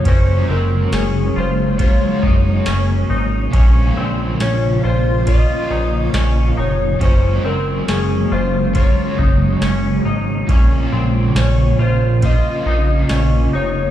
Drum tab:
RD |x-x-x-x-|x-x-x-x-|x-x-x-x-|x-x-x-x-|
TB |--x---x-|--x---x-|--x---x-|--x---x-|
SD |--o---o-|--o---o-|--o---o-|--o---o-|
BD |o---oo--|o---o---|o---oo--|o---o---|